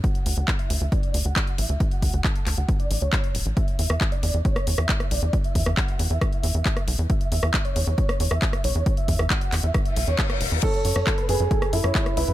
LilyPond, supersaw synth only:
\new Staff \with { instrumentName = "Supersaw synth" } { \time 4/4 \key e \mixolydian \tempo 4 = 136 fis''8 fis''8. e''8. d''8. fis''8. e''8~ | e''16 fis''8. a''8. fis''8 d''8 cis''8. r8 | e''8 e''8. d''8. cis''8. e''8. d''8~ | d''16 e''8. fis''8. e''8 e''8 e''8. r8 |
e''8 e''8. cis''8. cis''8. e''8. cis''8~ | cis''16 e''8. fis''8. e''8 e''8 cis''8. r8 | cis''8 cis''8. b'8. a'8. cis''8. b'8 | }